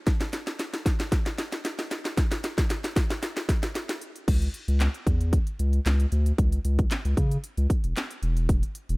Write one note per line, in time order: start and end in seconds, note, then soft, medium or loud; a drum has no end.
0.07 kick loud
0.07 snare loud
0.07 closed hi-hat medium
0.21 snare loud
0.21 closed hi-hat medium
0.33 snare loud
0.33 closed hi-hat medium
0.47 snare loud
0.47 closed hi-hat medium
0.59 snare loud
0.59 closed hi-hat medium
0.74 snare loud
0.74 closed hi-hat medium
0.86 kick loud
0.86 snare loud
0.86 closed hi-hat medium
1.00 snare loud
1.00 closed hi-hat medium
1.12 kick loud
1.12 snare loud
1.12 closed hi-hat loud
1.26 snare loud
1.26 closed hi-hat medium
1.38 snare loud
1.38 closed hi-hat medium
1.52 snare loud
1.52 closed hi-hat medium
1.65 snare loud
1.65 closed hi-hat medium
1.79 snare loud
1.79 closed hi-hat medium
1.91 snare loud
1.91 closed hi-hat medium
2.05 snare loud
2.05 closed hi-hat medium
2.17 kick loud
2.17 snare loud
2.17 closed hi-hat medium
2.31 snare loud
2.31 closed hi-hat medium
2.44 snare loud
2.44 closed hi-hat medium
2.58 kick loud
2.58 snare loud
2.58 closed hi-hat medium
2.70 snare loud
2.70 closed hi-hat medium
2.84 snare loud
2.84 closed hi-hat medium
2.96 kick loud
2.96 snare loud
2.96 closed hi-hat medium
3.10 snare loud
3.10 closed hi-hat medium
3.23 snare loud
3.23 closed hi-hat loud
3.36 snare loud
3.36 closed hi-hat medium
3.49 kick loud
3.49 snare loud
3.49 closed hi-hat medium
3.63 snare loud
3.63 closed hi-hat medium
3.75 snare loud
3.75 closed hi-hat medium
3.89 snare loud
3.89 closed hi-hat medium
4.01 closed hi-hat medium
4.16 closed hi-hat medium
4.28 4.48 C#2 loud
4.28 kick loud
4.28 closed hi-hat medium
4.28 crash loud
4.42 closed hi-hat medium
4.54 closed hi-hat medium
4.68 4.88 C#2 loud
4.68 closed hi-hat medium
4.80 snare loud
4.80 clap loud
4.80 closed hi-hat loud
4.94 closed hi-hat medium
5.07 5.38 E2 loud
5.07 kick loud
5.07 closed hi-hat medium
5.21 closed hi-hat medium
5.33 kick loud
5.33 closed hi-hat loud
5.47 closed hi-hat medium
5.59 5.80 C#2 loud
5.59 closed hi-hat medium
5.73 closed hi-hat medium
5.86 6.06 C#2 loud
5.86 snare loud
5.86 clap loud
5.86 closed hi-hat medium
6.00 closed hi-hat medium
6.12 6.32 D2 medium
6.12 closed hi-hat medium
6.26 closed hi-hat medium
6.38 6.59 C#2 loud
6.38 kick loud
6.38 closed hi-hat medium
6.52 closed hi-hat medium
6.65 6.85 C#2 loud
6.65 closed hi-hat medium
6.79 kick loud
6.79 closed hi-hat medium
6.91 snare medium
6.91 clap loud
6.91 closed hi-hat loud
7.05 7.15 C#2 loud
7.05 closed hi-hat medium
7.17 7.38 C#3 loud
7.17 kick loud
7.17 closed hi-hat medium
7.31 closed hi-hat medium
7.44 closed hi-hat loud
7.57 7.67 C#2 medium
7.57 closed hi-hat medium
7.70 kick loud
7.70 closed hi-hat medium
7.84 7.93 E1 medium
7.84 closed hi-hat medium
7.97 snare loud
7.97 clap loud
7.97 closed hi-hat medium
8.11 closed hi-hat medium
8.22 8.63 E1 loud
8.22 closed hi-hat medium
8.37 closed hi-hat medium
8.49 kick loud
8.49 closed hi-hat medium
8.63 closed hi-hat medium
8.75 closed hi-hat medium
8.89 8.97 E1 loud
8.89 closed hi-hat medium